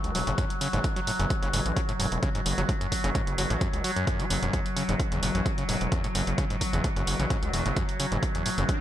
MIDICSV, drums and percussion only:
0, 0, Header, 1, 2, 480
1, 0, Start_track
1, 0, Key_signature, 3, "minor"
1, 0, Tempo, 461538
1, 876, Time_signature, 4, 2, 24, 8
1, 9159, End_track
2, 0, Start_track
2, 0, Title_t, "Drums"
2, 43, Note_on_c, 9, 42, 54
2, 147, Note_off_c, 9, 42, 0
2, 155, Note_on_c, 9, 46, 108
2, 259, Note_off_c, 9, 46, 0
2, 283, Note_on_c, 9, 42, 55
2, 387, Note_off_c, 9, 42, 0
2, 395, Note_on_c, 9, 36, 127
2, 395, Note_on_c, 9, 42, 82
2, 499, Note_off_c, 9, 36, 0
2, 499, Note_off_c, 9, 42, 0
2, 523, Note_on_c, 9, 42, 57
2, 627, Note_off_c, 9, 42, 0
2, 635, Note_on_c, 9, 46, 93
2, 739, Note_off_c, 9, 46, 0
2, 762, Note_on_c, 9, 42, 51
2, 866, Note_off_c, 9, 42, 0
2, 875, Note_on_c, 9, 36, 123
2, 875, Note_on_c, 9, 42, 79
2, 979, Note_off_c, 9, 36, 0
2, 979, Note_off_c, 9, 42, 0
2, 1003, Note_on_c, 9, 42, 52
2, 1107, Note_off_c, 9, 42, 0
2, 1115, Note_on_c, 9, 46, 106
2, 1219, Note_off_c, 9, 46, 0
2, 1243, Note_on_c, 9, 42, 53
2, 1347, Note_off_c, 9, 42, 0
2, 1355, Note_on_c, 9, 36, 127
2, 1355, Note_on_c, 9, 42, 83
2, 1459, Note_off_c, 9, 36, 0
2, 1459, Note_off_c, 9, 42, 0
2, 1483, Note_on_c, 9, 42, 54
2, 1587, Note_off_c, 9, 42, 0
2, 1596, Note_on_c, 9, 46, 99
2, 1700, Note_off_c, 9, 46, 0
2, 1723, Note_on_c, 9, 42, 52
2, 1827, Note_off_c, 9, 42, 0
2, 1835, Note_on_c, 9, 36, 124
2, 1836, Note_on_c, 9, 42, 80
2, 1939, Note_off_c, 9, 36, 0
2, 1940, Note_off_c, 9, 42, 0
2, 1963, Note_on_c, 9, 42, 53
2, 2067, Note_off_c, 9, 42, 0
2, 2076, Note_on_c, 9, 46, 114
2, 2180, Note_off_c, 9, 46, 0
2, 2204, Note_on_c, 9, 42, 53
2, 2308, Note_off_c, 9, 42, 0
2, 2316, Note_on_c, 9, 36, 127
2, 2316, Note_on_c, 9, 42, 72
2, 2420, Note_off_c, 9, 36, 0
2, 2420, Note_off_c, 9, 42, 0
2, 2444, Note_on_c, 9, 42, 56
2, 2548, Note_off_c, 9, 42, 0
2, 2556, Note_on_c, 9, 46, 92
2, 2660, Note_off_c, 9, 46, 0
2, 2684, Note_on_c, 9, 42, 49
2, 2788, Note_off_c, 9, 42, 0
2, 2796, Note_on_c, 9, 36, 120
2, 2796, Note_on_c, 9, 42, 75
2, 2900, Note_off_c, 9, 36, 0
2, 2900, Note_off_c, 9, 42, 0
2, 2924, Note_on_c, 9, 42, 53
2, 3028, Note_off_c, 9, 42, 0
2, 3036, Note_on_c, 9, 36, 63
2, 3036, Note_on_c, 9, 46, 109
2, 3140, Note_off_c, 9, 36, 0
2, 3140, Note_off_c, 9, 46, 0
2, 3164, Note_on_c, 9, 42, 53
2, 3268, Note_off_c, 9, 42, 0
2, 3276, Note_on_c, 9, 36, 127
2, 3277, Note_on_c, 9, 42, 80
2, 3380, Note_off_c, 9, 36, 0
2, 3381, Note_off_c, 9, 42, 0
2, 3404, Note_on_c, 9, 42, 54
2, 3508, Note_off_c, 9, 42, 0
2, 3517, Note_on_c, 9, 46, 94
2, 3621, Note_off_c, 9, 46, 0
2, 3644, Note_on_c, 9, 42, 54
2, 3748, Note_off_c, 9, 42, 0
2, 3756, Note_on_c, 9, 36, 127
2, 3756, Note_on_c, 9, 42, 80
2, 3860, Note_off_c, 9, 36, 0
2, 3860, Note_off_c, 9, 42, 0
2, 3884, Note_on_c, 9, 42, 53
2, 3988, Note_off_c, 9, 42, 0
2, 3997, Note_on_c, 9, 46, 109
2, 4101, Note_off_c, 9, 46, 0
2, 4124, Note_on_c, 9, 42, 51
2, 4228, Note_off_c, 9, 42, 0
2, 4236, Note_on_c, 9, 36, 125
2, 4236, Note_on_c, 9, 42, 78
2, 4340, Note_off_c, 9, 36, 0
2, 4340, Note_off_c, 9, 42, 0
2, 4364, Note_on_c, 9, 42, 54
2, 4468, Note_off_c, 9, 42, 0
2, 4476, Note_on_c, 9, 46, 93
2, 4580, Note_off_c, 9, 46, 0
2, 4603, Note_on_c, 9, 42, 48
2, 4707, Note_off_c, 9, 42, 0
2, 4715, Note_on_c, 9, 36, 125
2, 4716, Note_on_c, 9, 42, 77
2, 4819, Note_off_c, 9, 36, 0
2, 4820, Note_off_c, 9, 42, 0
2, 4844, Note_on_c, 9, 42, 51
2, 4948, Note_off_c, 9, 42, 0
2, 4956, Note_on_c, 9, 46, 106
2, 5060, Note_off_c, 9, 46, 0
2, 5084, Note_on_c, 9, 42, 51
2, 5188, Note_off_c, 9, 42, 0
2, 5195, Note_on_c, 9, 36, 115
2, 5196, Note_on_c, 9, 42, 77
2, 5299, Note_off_c, 9, 36, 0
2, 5300, Note_off_c, 9, 42, 0
2, 5323, Note_on_c, 9, 42, 50
2, 5427, Note_off_c, 9, 42, 0
2, 5436, Note_on_c, 9, 46, 96
2, 5540, Note_off_c, 9, 46, 0
2, 5563, Note_on_c, 9, 42, 48
2, 5667, Note_off_c, 9, 42, 0
2, 5675, Note_on_c, 9, 36, 120
2, 5676, Note_on_c, 9, 42, 71
2, 5779, Note_off_c, 9, 36, 0
2, 5780, Note_off_c, 9, 42, 0
2, 5803, Note_on_c, 9, 42, 53
2, 5907, Note_off_c, 9, 42, 0
2, 5915, Note_on_c, 9, 46, 101
2, 6019, Note_off_c, 9, 46, 0
2, 6043, Note_on_c, 9, 42, 49
2, 6147, Note_off_c, 9, 42, 0
2, 6155, Note_on_c, 9, 36, 123
2, 6156, Note_on_c, 9, 42, 73
2, 6259, Note_off_c, 9, 36, 0
2, 6260, Note_off_c, 9, 42, 0
2, 6283, Note_on_c, 9, 42, 52
2, 6387, Note_off_c, 9, 42, 0
2, 6396, Note_on_c, 9, 46, 93
2, 6500, Note_off_c, 9, 46, 0
2, 6524, Note_on_c, 9, 42, 49
2, 6628, Note_off_c, 9, 42, 0
2, 6635, Note_on_c, 9, 36, 117
2, 6636, Note_on_c, 9, 42, 74
2, 6739, Note_off_c, 9, 36, 0
2, 6740, Note_off_c, 9, 42, 0
2, 6763, Note_on_c, 9, 42, 48
2, 6867, Note_off_c, 9, 42, 0
2, 6875, Note_on_c, 9, 36, 60
2, 6876, Note_on_c, 9, 46, 109
2, 6979, Note_off_c, 9, 36, 0
2, 6980, Note_off_c, 9, 46, 0
2, 7003, Note_on_c, 9, 42, 50
2, 7107, Note_off_c, 9, 42, 0
2, 7115, Note_on_c, 9, 36, 114
2, 7116, Note_on_c, 9, 42, 77
2, 7219, Note_off_c, 9, 36, 0
2, 7220, Note_off_c, 9, 42, 0
2, 7243, Note_on_c, 9, 42, 52
2, 7347, Note_off_c, 9, 42, 0
2, 7356, Note_on_c, 9, 46, 92
2, 7460, Note_off_c, 9, 46, 0
2, 7483, Note_on_c, 9, 42, 48
2, 7587, Note_off_c, 9, 42, 0
2, 7595, Note_on_c, 9, 36, 118
2, 7596, Note_on_c, 9, 42, 73
2, 7699, Note_off_c, 9, 36, 0
2, 7700, Note_off_c, 9, 42, 0
2, 7723, Note_on_c, 9, 42, 50
2, 7827, Note_off_c, 9, 42, 0
2, 7836, Note_on_c, 9, 46, 97
2, 7940, Note_off_c, 9, 46, 0
2, 7963, Note_on_c, 9, 42, 49
2, 8067, Note_off_c, 9, 42, 0
2, 8075, Note_on_c, 9, 36, 118
2, 8076, Note_on_c, 9, 42, 76
2, 8179, Note_off_c, 9, 36, 0
2, 8180, Note_off_c, 9, 42, 0
2, 8203, Note_on_c, 9, 42, 49
2, 8307, Note_off_c, 9, 42, 0
2, 8316, Note_on_c, 9, 46, 93
2, 8420, Note_off_c, 9, 46, 0
2, 8443, Note_on_c, 9, 42, 46
2, 8547, Note_off_c, 9, 42, 0
2, 8555, Note_on_c, 9, 36, 111
2, 8556, Note_on_c, 9, 42, 75
2, 8659, Note_off_c, 9, 36, 0
2, 8660, Note_off_c, 9, 42, 0
2, 8683, Note_on_c, 9, 42, 52
2, 8787, Note_off_c, 9, 42, 0
2, 8795, Note_on_c, 9, 46, 107
2, 8899, Note_off_c, 9, 46, 0
2, 8923, Note_on_c, 9, 42, 52
2, 9027, Note_off_c, 9, 42, 0
2, 9035, Note_on_c, 9, 42, 80
2, 9036, Note_on_c, 9, 36, 115
2, 9139, Note_off_c, 9, 42, 0
2, 9140, Note_off_c, 9, 36, 0
2, 9159, End_track
0, 0, End_of_file